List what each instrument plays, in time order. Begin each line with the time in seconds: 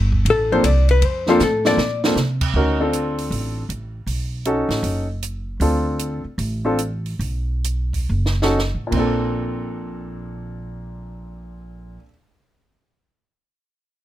Already playing: upright bass G1
0.12 kick
0.25 upright bass A1, ride
0.30 hollow-body jazz guitar A4
0.52 grand piano F3 A#3 C4 D4 A4, hollow-body jazz guitar C5
0.64 upright bass C2, hollow-body jazz guitar D5, hi-hat pedal, ride
0.89 hollow-body jazz guitar B4, ride
1.02 upright bass F2, ride
1.06 hollow-body jazz guitar C5
1.26 grand piano F3 A#3 C4 D4 A4, hollow-body jazz guitar F4, snare
1.39 upright bass A2, hollow-body jazz guitar A4, snare, hi-hat pedal
1.65 grand piano F3 A#3 C4 D4 A4, hollow-body jazz guitar D5, snare
1.77 upright bass A#2, snare
2.04 grand piano F3 A#3 C4 D4 A4, snare
2.16 upright bass C3, snare, hi-hat pedal
2.41 kick, crash
2.54 upright bass D2, grand piano C#4 D#4 F#4 A#4
2.80 grand piano C4 D4 F4 A4
2.93 closed hi-hat
3.18 open hi-hat
3.31 upright bass A1, open hi-hat
3.69 upright bass A1, closed hi-hat
4.06 upright bass B1, open hi-hat
4.45 grand piano C#4 D#4 F#4 A4, closed hi-hat
4.69 upright bass A1, snare, open hi-hat
4.83 upright bass F#1, open hi-hat
5.23 closed hi-hat
5.60 upright bass D2, grand piano C4 D4 F4 A4, open hi-hat
5.99 closed hi-hat
6.24 muted upright bass stroke
6.38 upright bass A1, open hi-hat
6.65 grand piano C4 D4 F4 A4
6.79 closed hi-hat
7.06 open hi-hat
7.19 upright bass B1, open hi-hat
7.64 closed hi-hat
7.93 kick, open hi-hat
8.09 upright bass F#1
8.26 snare
8.42 grand piano C#4 D#4 F#4 A4, snare
8.59 snare
8.75 upright bass A1
8.87 grand piano A#2 A#3
8.92 upright bass A#1, grand piano C4, kick, crash
8.97 grand piano D4 A4